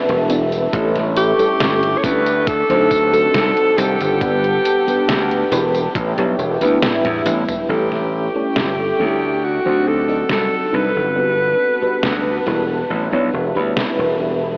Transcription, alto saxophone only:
1.17 G4
1.98 C#5
2.04 B4
2.47 A4
3.77 G4
6.83 E4
7.70 G4
9.45 F#4
9.88 A4
10.32 A4
10.75 B4

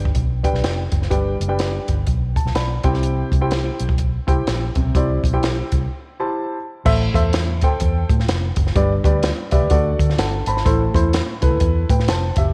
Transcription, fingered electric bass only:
Already playing: G1
0.16 B1
0.53 B1
0.63 F1
0.93 F#1
1.11 G1
1.40 F#1
1.89 G1
2.07 B1
2.45 B1
2.55 B1
2.84 C2
3.32 C2
3.80 B1
4.28 C2
4.47 A#1
4.76 B1
4.95 C2
5.24 B1
5.73 C2
6.86 A1
7.14 E2
7.63 D2
7.81 E2
8.10 A2
8.28 F1
8.57 F#1
8.76 G1
9.04 D2
9.52 C2
9.62 D2
9.71 D2
9.99 D3
10.18 G1
10.47 G#1
10.66 A1
10.95 E2
11.43 C2
11.51 D2
11.61 E2
11.90 A2
12.08 F1
12.37 F#1

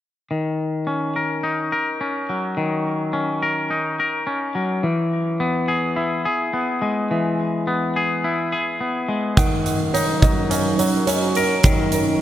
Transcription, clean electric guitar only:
0.31 D#3
0.87 C#4
1.16 A#4
1.43 D#4
1.72 A#4
2.01 C#4
2.29 F#3
2.57 D#3
3.13 C#4
3.43 A#4
3.70 D#4
4.00 A#4
4.27 C#4
4.55 F#3
4.83 E3
5.40 B3
5.68 G#4
5.96 E4
6.25 G#4
6.53 B3
6.82 G#3
7.11 E3
7.67 B3
7.96 G#4
8.24 E4
8.52 G#4
8.81 B3
9.08 G#3
9.37 D#3
9.94 D#4
10.22 F#3
10.50 C#4
10.79 F#3
11.08 C#4
11.37 A#4
11.65 D#3

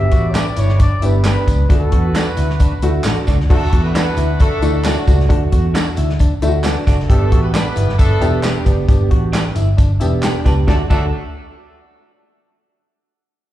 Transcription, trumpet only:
Already playing: E5
0.30 C#5
0.37 D5
0.59 C#5
0.82 D5
1.06 B4
1.28 B4
1.73 A4

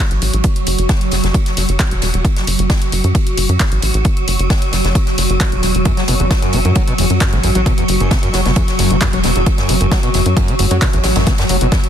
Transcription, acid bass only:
5.86 F#2
5.97 F#3
6.08 B2
6.20 E2
6.42 F#2
6.53 C#3
6.65 F#2
6.76 F#3
6.88 B2
6.99 E2
7.21 F#2
7.33 C#3
7.44 F#2
7.55 F#3
7.66 B2
7.78 E2
8.00 F#2
8.11 C#3
8.23 F#2
8.34 F#3
8.45 B2
8.56 E2
8.79 F#2
8.91 C#3
9.02 F#2
9.13 F#3
9.24 B2
9.36 E2
9.58 F#2
9.69 C#3
9.81 F#2
9.92 F#3
10.03 B2
10.14 E2
10.37 F#2
10.48 C#3
10.59 F#2
10.71 F#3
10.82 B2
10.93 E2
11.16 F#2
11.27 C#3
11.39 F#2
11.49 F#3
11.61 B2
11.72 E2

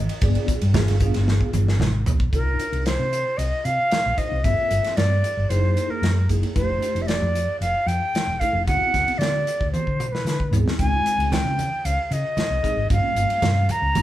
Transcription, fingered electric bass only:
0.22 G1
0.48 muted fingered electric bass stroke
0.62 G2
0.75 G1
1.15 G1
1.54 G1
1.81 G#1
2.06 B1
2.33 C2
2.72 C2
2.99 C3
3.38 C2
3.65 C3
3.92 muted fingered electric bass stroke
4.06 A#1
4.17 muted fingered electric bass stroke
4.31 C2
4.44 G1
4.58 muted fingered electric bass stroke
4.71 G1
4.97 G2
5.37 G1
5.50 F#1
5.63 F#2
5.89 muted fingered electric bass stroke
6.02 F#2
6.29 F#1
6.56 F1
6.82 muted fingered electric bass stroke
6.95 F1
7.22 F2
7.61 F1
7.86 F2
8.14 muted fingered electric bass stroke
8.27 E1
8.41 muted fingered electric bass stroke
8.53 F1
8.67 D2
8.81 muted fingered electric bass stroke
8.94 D2
9.08 muted fingered electric bass stroke
9.19 D3
9.61 D2
9.87 D3
10.12 muted fingered electric bass stroke
10.25 D3
10.51 G#2
10.79 C#2
11.18 C#2
11.45 C#3
11.85 C#2
12.11 C#3
12.38 muted fingered electric bass stroke
12.50 C2
12.64 muted fingered electric bass stroke
12.77 G#1
12.90 G1
13.04 muted fingered electric bass stroke
13.15 G1
13.42 G2
13.82 C#2
13.96 F#1

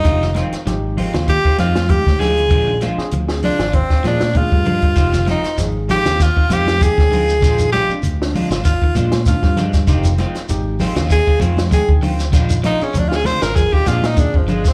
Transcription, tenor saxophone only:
Already playing: D#4
1.29 G4
1.59 F4
1.90 G4
2.20 G#4
3.44 D4
3.75 C4
4.07 D4
4.37 F4
5.30 D#4
5.91 G4
6.22 F4
6.52 G4
6.83 G#4
7.72 G4
8.65 F4
8.98 D4
9.27 F4
11.12 G#4
11.42 F4
11.73 G#4
12.66 D#4
12.83 C#4
12.98 D4
13.08 F4
13.15 G#4
13.26 C5
13.42 A#4
13.55 G#4
13.73 G4
13.87 F4
14.06 D#4
14.18 D4
14.37 F3
14.49 G#3
14.68 C4

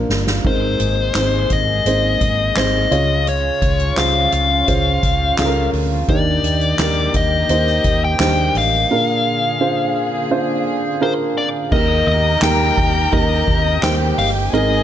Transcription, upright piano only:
Already playing: A#3 D4 F4 A#4 C5
0.45 G#2 C4 D#4 G#4 A#4
1.16 C4 D#4 G#4 C5
1.86 C4 D#4 G#4 C5
2.57 C4 D#4 G#4 C5
2.91 C#3 C#4 F4 G#4 C#5
3.97 C#4 F4 G#4 C5
4.68 C#4 F4 G#4 C5
5.39 C#4 F4 G#4 A4
5.45 A#4
6.09 D#3 D4 D#4 G4 A#4
6.80 D4 D#4 G4 A#4
7.50 A#3 D#4 G4 C5
8.20 D4 D#4 G4 C5
8.91 A#2 D4 F4 G#4 A#4
9.61 D4 F4 G#4 C5
10.31 D4 F4 G#4 C5
11.01 D4 F4 G#4 A#4
11.72 D#3 A#3 D#4 G4 A#4
12.42 A#3 D#4 G4 A#4
13.12 A#3 D#4 G4 A#4
13.83 A#3 D#4 G4 C5
14.53 G#2 C4 D#4 G#4 A#4

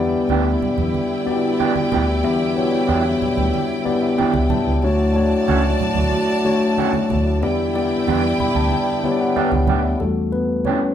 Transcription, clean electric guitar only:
0.30 E3 B3 D4 G4
1.59 E3 B3 D4 G4
1.92 E3 B3 D4 G4
2.87 E3 B3 D4 G4
4.18 E3 B3 D4 G4
5.48 F#3 A3 C#4 F#4
6.78 F#3 A3 C#4 F#4
8.07 G3 B3 D4 G4
9.36 G3 B3 D4 G4
9.68 G3 B3 D4 G4
10.66 E3 B3 D4 G4

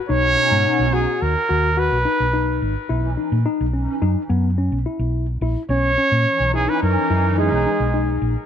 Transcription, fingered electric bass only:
0.10 B1
0.52 G#2
0.79 B1
1.22 D#2
1.50 D#2
1.92 B1
2.20 B1
2.62 G#1
2.90 B1
3.32 A#2
3.61 B1
4.02 F#2
4.30 F#2
4.72 B1
4.99 B1
5.41 A#1
5.69 B1
6.12 A#2
6.40 B1
6.83 F#2
7.10 F#2
7.52 B1
7.80 B1
8.22 A#1

